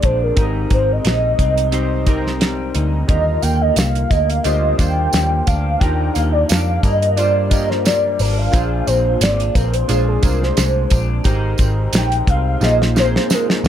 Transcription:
Already playing: A#2 G#3 C4 D4 F4 G#4 C5
0.02 A#1 D4 C5, kick, closed hi-hat
0.23 A#4
0.36 G#1 G#2 C4 D#4 G4 A#4, kick, closed hi-hat
0.70 G#1 C4 C5, kick, closed hi-hat
0.92 D#5
1.05 A#1 D#4, snare, closed hi-hat
1.39 C2 C4, kick, closed hi-hat
1.58 closed hi-hat
1.72 G3 C4 D#4 G4 C5, closed hi-hat
2.06 C4 D#4 G4 A#4, kick, closed hi-hat
2.27 snare
2.40 G3, snare, closed hi-hat
2.75 D2 D#4, closed hi-hat
3.07 D#2 D3 F4 G4 A#4 D#5, kick, closed hi-hat
3.42 D#2 A#3 G5, closed hi-hat, tambourine
3.61 D#5
3.76 C2 F5, snare, closed hi-hat, tambourine
3.95 closed hi-hat
4.10 D2 A#3 D#5, kick, closed hi-hat, tambourine
4.29 F5, closed hi-hat
4.43 D2 G3 D4 F4 G4 C5 D#5, closed hi-hat, tambourine
4.76 D#2 A#3 D4 F4 G4 G5, kick, closed hi-hat, tambourine
4.81 C5
5.13 D#2 G3, snare, closed hi-hat, tambourine
5.47 D2 D4 F5, kick, closed hi-hat, tambourine
5.79 D#2 D#3 D4 F4 G4 A#4 G5, kick, closed hi-hat
6.13 D#2 A#3 F5, closed hi-hat, tambourine
6.32 D5
6.48 F2 D4 F5, closed hi-hat, tambourine
6.52 snare
6.83 G2 A#3 D#5, kick, closed hi-hat, tambourine
7.01 D#5, closed hi-hat
7.16 G3 D4 F4 G4 C5 D5, closed hi-hat, tambourine
7.50 A#3 D4 F4 G4 A#4 D#5, kick, closed hi-hat, tambourine
7.69 C5, snare
7.85 G3 D5, snare, closed hi-hat, tambourine
8.19 G#1 D4 A#4, open hi-hat, tambourine
8.37 F5
8.51 A#1 A#2 D4 F4 G#4 C5, kick, closed hi-hat, tambourine
8.87 A#1 C4 C5, closed hi-hat, tambourine
9.21 G#1 C4 D5, snare, closed hi-hat, tambourine
9.40 D4, closed hi-hat
9.54 A#1 C4 A#4, kick, closed hi-hat, tambourine
9.73 C5, closed hi-hat
9.88 A#1 G#3 D4 F4 G#4 C5, closed hi-hat, tambourine
10.08 G#4
10.22 C2 C4 D4 F4 G#4 A#4 C5, kick, closed hi-hat, tambourine
10.43 C5, snare
10.57 C2 G#3, snare, closed hi-hat, tambourine
10.90 A#1 D4, kick, closed hi-hat, tambourine
11.24 G#1 G#2 D#4 G4 A#4 C5, kick, closed hi-hat, tambourine
11.58 G#1 C4, kick, closed hi-hat, tambourine
11.93 A#1 D#4, snare, closed hi-hat, tambourine
11.97 G5
12.12 closed hi-hat
12.27 C2 C4 F5, kick, closed hi-hat
12.48 F5
12.61 A#1 A#2 D#4 F4 G#4 C5 D#5, snare, tambourine
12.82 snare
12.95 C4 D#4 F4 G#4 A#4 C5, snare, tambourine
13.04 C5
13.16 C5, snare
13.30 G#3 A#4, snare, tambourine
13.50 snare
13.64 D2 D#4, tambourine

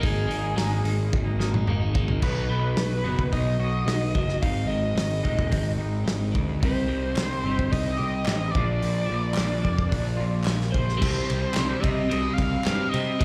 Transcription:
0.01 G#1 G#2 D#3 G#3 A#3 D#4 G#4, kick, open hi-hat
0.29 G#1 D#3 G#3 A#3 D#4, open hi-hat
0.43 G#3 A#3 D#4
0.56 G#1 G#2 D#3 G#3 A#3 D#4, snare, open hi-hat
0.69 G#3 A#3 D#4
0.83 G#1 D#3 G#3 A#3 D#4, muted overdriven electric guitar stroke, open hi-hat
0.97 G#3 A#3 D#4
1.13 G#1, kick, high tom
1.24 G#3 A#3 D#4
1.38 D#3 G#3 A#3 D#4, snare
1.53 G#3 A#3 D#4, mid tom
1.67 G#1 G#2 D#3 G#3 A#3 D#4, mid tom
1.80 G#3 A#3 D#4
1.93 D#3 G#3 A#3 D#4, kick
2.07 G#3 A#3 D#4, floor tom
2.20 B1 B2 F#3 B3 D#4 F#4 B4, kick, crash
2.49 B1 F#3
2.77 B1 F#3, snare, open hi-hat
3.04 F#1 B2 F#3 B3 D#4 F#4
3.19 kick
3.32 B1 D#4 D#5, kick, open hi-hat
3.59 B1 F#4
3.86 B1 B3, snare, open hi-hat
4.15 F#1 F#3, kick
4.29 snare
4.42 G#1 G#2 D#3 G#3 C4 D#4 F5, kick, open hi-hat
4.67 G#1 D#3 D#5
4.95 G#1 D#3, snare, open hi-hat
5.23 D#1 G#2 D#3 G#3 C4 D#4, kick
5.39 kick
5.51 G#1 C4, kick, open hi-hat
5.78 G#1 D#4
6.04 G#1 G#3, snare, open hi-hat
6.32 D2 D#3, kick
6.62 C2 C3 G3 C4 D#4 G4 C5, kick, open hi-hat
6.88 C2 G3
7.16 C2 G3, snare, clap, open hi-hat
7.44 G1 G3 C4 D#4 G4
7.48 C3
7.59 kick
7.70 C2 D#4 D#5, kick, open hi-hat
7.97 C2 G4
8.25 A1 C4, snare, clap, open hi-hat
8.51 D5
8.55 A#1 A#2 F3 A#3 D4 F4, kick
8.79 A#1 A#2, open hi-hat
9.06 A#1 F3
9.34 A#1 A#2 F3, snare, clap, open hi-hat
9.38 F3 A#3 D4 F4
9.62 F1 A#3, kick
9.78 kick
9.89 A#1 D4, kick, open hi-hat
10.17 A#1 F4
10.44 A#1 A#3, snare, clap, open hi-hat
10.61 snare
10.71 F3 C5, kick
10.75 A#1
10.89 snare
10.97 C3 G3
11.01 C2 G3 C4, kick, crash
11.30 C2, ride
11.52 C3 G3, clap
11.56 C2 C3 G3 C4, snare, ride
11.80 C3 C4 D#5, kick, ride
11.84 C3 G3 C4
12.10 C2 C3 G3 C4, ride
12.33 F5
12.38 C2, kick, ride
12.61 F5, clap
12.65 G2 C3 G3 C4, snare, ride
12.89 C3 D#5
12.94 C3 G3 C4, ride
13.20 C2 C3 G3 C4, kick, ride

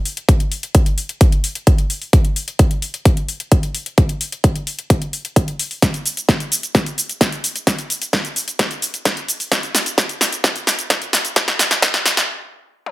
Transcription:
0.05 open hi-hat
0.17 closed hi-hat
0.29 kick, closed hi-hat
0.40 closed hi-hat
0.52 open hi-hat
0.63 closed hi-hat
0.75 kick, closed hi-hat
0.86 closed hi-hat
0.98 open hi-hat
1.09 closed hi-hat
1.21 kick, closed hi-hat
1.32 closed hi-hat
1.44 open hi-hat
1.55 closed hi-hat
1.67 kick, closed hi-hat
1.78 closed hi-hat
1.90 open hi-hat
2.02 open hi-hat
2.13 kick, closed hi-hat
2.25 closed hi-hat
2.36 open hi-hat
2.48 closed hi-hat
2.59 kick, closed hi-hat
2.71 closed hi-hat
2.82 open hi-hat
2.94 closed hi-hat
3.05 kick, closed hi-hat
3.17 closed hi-hat
3.29 open hi-hat
3.40 closed hi-hat
3.52 kick, closed hi-hat
3.63 closed hi-hat
3.75 open hi-hat
3.86 closed hi-hat
3.98 kick, closed hi-hat
4.09 closed hi-hat
4.21 open hi-hat
4.32 closed hi-hat
4.44 kick, closed hi-hat
4.56 closed hi-hat
4.67 open hi-hat
4.79 closed hi-hat
4.90 kick, closed hi-hat
5.02 closed hi-hat
5.13 open hi-hat
5.25 closed hi-hat
5.36 kick, closed hi-hat
5.48 closed hi-hat
5.59 open hi-hat
5.71 open hi-hat
5.82 kick, snare, closed hi-hat, shaker
5.94 closed hi-hat, shaker
6.06 open hi-hat, shaker
6.17 closed hi-hat, shaker
6.29 kick, snare, closed hi-hat, shaker
6.40 closed hi-hat, shaker
6.52 open hi-hat, shaker
6.63 closed hi-hat, shaker
6.75 kick, snare, closed hi-hat, shaker
6.86 closed hi-hat, shaker
6.98 open hi-hat, shaker
7.09 closed hi-hat, shaker
7.21 kick, snare, closed hi-hat, shaker
7.32 closed hi-hat, shaker
7.44 open hi-hat, shaker
7.56 closed hi-hat, shaker
7.67 kick, snare, closed hi-hat, shaker
7.79 closed hi-hat, shaker
7.90 open hi-hat, shaker
8.02 closed hi-hat, shaker
8.13 kick, snare, closed hi-hat, shaker
8.25 closed hi-hat, shaker
8.36 open hi-hat, shaker
8.48 closed hi-hat, shaker
8.59 kick, snare, closed hi-hat, shaker
8.71 closed hi-hat, shaker
8.82 open hi-hat, shaker
8.94 closed hi-hat, shaker
9.05 kick, snare, closed hi-hat, shaker
9.17 closed hi-hat, shaker
9.28 open hi-hat, shaker
9.40 open hi-hat, shaker
9.52 kick, snare, closed hi-hat, shaker
9.63 closed hi-hat, shaker
9.75 snare, open hi-hat, shaker
9.86 closed hi-hat, shaker
9.98 kick, snare, closed hi-hat, shaker
10.09 closed hi-hat, shaker
10.21 snare, open hi-hat, shaker
10.33 closed hi-hat, shaker
10.44 kick, snare, closed hi-hat, shaker
10.56 closed hi-hat, shaker
10.67 snare, open hi-hat, shaker
10.79 closed hi-hat, shaker
10.90 kick, snare, closed hi-hat, shaker
11.02 closed hi-hat, shaker
11.13 snare, open hi-hat, shaker
11.25 closed hi-hat, shaker
11.36 kick, snare, closed hi-hat, shaker
11.48 snare, closed hi-hat, shaker
11.59 snare, open hi-hat, shaker
11.71 snare, closed hi-hat, shaker
11.82 kick, snare, closed hi-hat, shaker
11.94 snare, closed hi-hat, shaker
12.06 snare, open hi-hat, shaker
12.17 snare, closed hi-hat, shaker
12.86 high tom

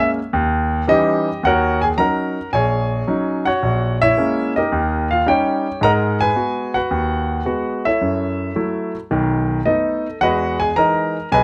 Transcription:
Already playing: G#3 A#3 C#4
0.33 D#2
0.88 E3 G3 C#4 D#4 G4 D#5
1.43 D#2 F#4 A#4 C#5 F#5
1.82 G#4 G#5
1.97 F#3 C#4 D#4 A#4 F#5 A#5
2.53 A#1 G#4 C#5 G#5
3.07 F#3 C#4 D#4
3.45 F#4 C#5 F#5
3.63 A#1
4.02 E4 C#5 E5
4.17 G#3 A#3 C#4
4.56 D#4 G4 A#4 D#5
4.72 D#2
5.11 F4 F5
5.26 G3 C#4 D#4 G4 C#5 G5
5.81 G#2 G#3 A#4 D#5 F#5 A#5
6.21 G#4 B4 G#5
6.35 G#3 B3 F#4
6.74 F#4 B4 F#5
6.91 D#2
7.45 G#3 B3 F#4
7.85 E4 A4 C#5 E5
8.01 F#2
8.55 F#3 A3 E4
9.11 B1 D#3
9.66 A3 B3 D#4 A4 D#5
10.21 E2 G#3 F#4 B4 D#5 F#5
10.60 G#4 G#5
10.76 E3 G#3 D#4 A#4 D#5 A#5
11.32 B1 G#4 B4 D#5 G#5

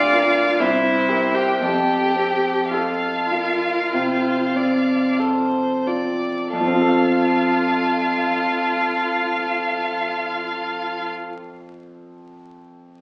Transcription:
Already playing: D2 F4 D5 F5
0.13 F4 A#4
0.59 C2 E4 C5 E5
1.09 G4 A#4
1.34 G4 G5
1.59 F2 G4 A4 G5
2.16 C4
2.71 F4 A4 F5
3.31 F4 A#4
3.93 C3 C5
4.55 C4 D5
5.19 A4 C5
5.87 F4 D5
6.52 F2 F4 A4 F5
6.60 F3
6.67 C4
6.74 F4
6.81 A4
6.88 F5

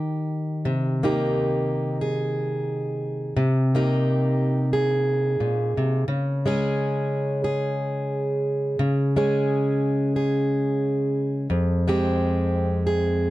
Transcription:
Already playing: D#3 D#4 G4
0.65 C3
1.03 A#3 D#4 G4
2.01 G#4
3.36 C3
3.75 A#3 D#4 G4
4.73 G#4
5.40 A#2
5.77 C3
6.08 C#3
6.46 G#3 C#4 G#4
7.44 G#4
8.79 C#3
9.16 G#3 C#4 G#4
10.16 G#4
11.50 F2
11.88 G#3 C4 G4
12.87 G#4

